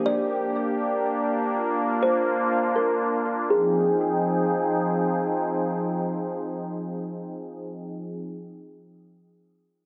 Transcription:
Already playing: A#3 D4 G4
0.06 D5
1.54 F4
2.03 C5
2.76 A#4
3.50 F3 C4 D#4 G#4 G5

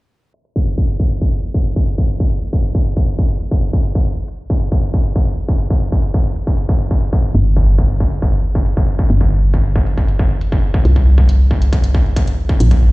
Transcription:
0.34 closed hi-hat
0.45 closed hi-hat
0.56 kick
0.78 kick
1.00 kick
1.11 closed hi-hat
1.22 kick, closed hi-hat
1.33 closed hi-hat
1.54 kick
1.65 closed hi-hat
1.76 kick
1.98 kick
2.09 closed hi-hat
2.20 kick
2.53 kick, closed hi-hat
2.75 kick
2.86 closed hi-hat
2.97 kick, closed hi-hat
3.08 closed hi-hat
3.19 kick
3.41 closed hi-hat
3.51 kick
3.73 kick
3.84 closed hi-hat
3.95 kick
4.06 closed hi-hat
4.28 closed hi-hat
4.50 kick
4.61 closed hi-hat
4.72 kick, closed hi-hat
4.79 closed hi-hat
4.83 closed hi-hat
4.86 closed hi-hat
4.94 kick
5.16 kick, closed hi-hat
5.27 closed hi-hat
5.30 closed hi-hat
5.34 closed hi-hat
5.49 kick
5.60 closed hi-hat
5.65 closed hi-hat
5.70 kick
5.92 kick, closed hi-hat
6.03 closed hi-hat
6.14 kick
6.36 closed hi-hat
6.47 kick, closed hi-hat
6.58 closed hi-hat
6.69 kick
6.91 kick
7.02 closed hi-hat
7.05 closed hi-hat
7.07 closed hi-hat
7.10 kick, closed hi-hat
7.18 closed hi-hat
7.21 closed hi-hat
7.35 G1, closed hi-hat
7.57 kick
7.79 kick, closed hi-hat
8.00 kick
8.11 closed hi-hat
8.22 kick, closed hi-hat
8.33 closed hi-hat
8.55 kick
8.66 closed hi-hat
8.77 kick, closed hi-hat
8.99 kick
9.10 G1, closed hi-hat
9.21 kick, closed hi-hat
9.54 kick, closed hi-hat
9.76 kick
9.87 closed hi-hat
9.97 kick, closed hi-hat
10.08 closed hi-hat
10.19 kick
10.41 closed hi-hat
10.52 kick, closed hi-hat
10.74 kick
10.85 C2, closed hi-hat
10.96 kick, closed hi-hat
11.18 kick
11.29 closed hi-hat
11.51 kick
11.62 closed hi-hat
11.73 kick, closed hi-hat
11.84 closed hi-hat
11.95 kick
12.16 kick, closed hi-hat
12.27 closed hi-hat
12.49 kick
12.60 A#1, closed hi-hat
12.71 kick, closed hi-hat

